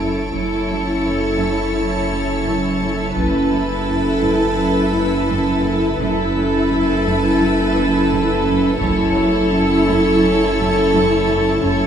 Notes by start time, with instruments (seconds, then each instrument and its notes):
Already playing: double bass section F#1, sub bass F#1, cello section F#2, viola section E4, ambient pad E4 C#5 A5, violin section A4 C#5 D7
0.00 cello section F#2
0.34 double bass section F#1, sub bass F#1, cello section F#2, ambient pad E4 C#5 A5, viola section E4, violin section A4 C#5
0.69 cello section F#3
0.94 violin section C#7
1.06 cello section F#2
1.40 cello section F#2
1.75 cello section F#2
2.11 cello section F#2
2.46 cello section F#2
2.81 cello section F#2
3.16 sub bass F#1, double bass section F#1, cello section F#2, ambient pad E4 B4 A5, viola section E4, violin section A4 B4, taiko
3.51 cello section F#3
3.88 cello section F#2
4.23 cello section F#2
4.58 cello section F#2
4.93 cello section F#2
5.29 cello section F#2
5.64 cello section F#2
5.97 sub bass F#1, double bass section F#1, cello section F#2, viola section E4, ambient pad E4 B4 A5, violin section A4 B4
6.35 cello section F#3
6.70 cello section F#2
7.05 cello section F#2
7.41 cello section F#2
7.76 cello section F#2
8.12 cello section F#2
8.47 cello section F#2
8.80 sub bass F#1, double bass section F#1, cello section F#2, viola section E4, ambient pad E4 C#5 A5, violin section A4 C#5, taiko
9.16 cello section F#3
9.52 cello section F#2
9.88 cello section F#2
10.23 cello section F#2
10.59 cello section F#2
10.94 cello section F#2
11.29 cello section F#2
11.63 sub bass F#1, double bass section F#1, cello section F#2, ambient pad E4 C#5 A5, viola section E4, violin section A4 C#5